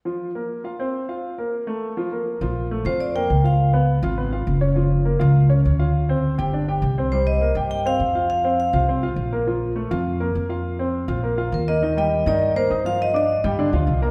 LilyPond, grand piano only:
\new Staff \with { instrumentName = "Grand piano" } { \time 4/4 \key f \mixolydian \tempo 4 = 204 <f f'>4 <bes bes'>4 <f' f''>8 <c' c''>4 <f' f''>8~ | <f' f''>8 <bes bes'>4 <a a'>4 <f f'>8 <bes bes'>4 | <f f'>4 <a a'>8 <f' f''>4 <bes bes'>4 <f' f''>8~ | <f' f''>8 <ces' ces''>4 <f' f''>8 <ces' ces''>8 <f' f''>4 <des' des''>8 |
<f f'>4 <bes bes'>8 <f' f''>4 <des' des''>4 <f' f''>8~ | <f' f''>8 <c' c''>4 <g' g''>8 <d' d''>8 <g' g''>4 <c' c''>8 | <g g'>4 <bes bes'>8 <g' g''>4 <c' c''>4 <f' f''>8~ | <f' f''>8 <c' c''>4 <f' f''>8 <c' c''>8 <f' f''>4 <bes bes'>8 |
<f f'>4 <a a'>8 <f' f''>4 <bes bes'>4 <f' f''>8~ | <f' f''>8 <c' c''>4 <f' f''>8 <bes bes'>8 <f' f''>4 <bes bes'>8 | \key ees \major <ees ees' ees''>8 <g g' g''>4 <ees ees' ees''>4 <bes bes' bes''>8 <ees' ees'' ees'''>8 <f f' f''>8~ | <f f' f''>8 <d' d'' d'''>4 <g g' g''>8 <d d' d''>8 <f f' f''>4 <bes bes' bes''>8 | }